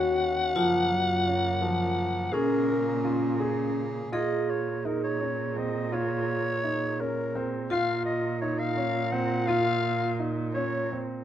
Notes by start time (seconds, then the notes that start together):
Already playing: D#2 D#3 C#4 F#4 F#5
0.54 F#2 C#3 F3 A#3 F4 A#4
0.91 F#3
1.27 C#4
1.62 F3
2.32 A#2 C#3 C#4 G#4 A#4
2.68 A#4
3.05 F4
3.40 G#4
4.12 A#2 F4 G#4 D#5
4.50 C#5
4.85 D#4 A#4
5.04 C#5
5.21 C#4
5.56 C4 D#5
5.92 F4 C#5
6.64 D#4
7.00 C#4 A#4
7.35 C4
7.70 A#2 F4 F5
8.05 D#5
8.41 D#4 C#5
8.59 F5
8.77 C#4
9.11 C4 F#5
9.47 F4 F5
10.19 D#4
10.54 C#4 C#5
10.92 C4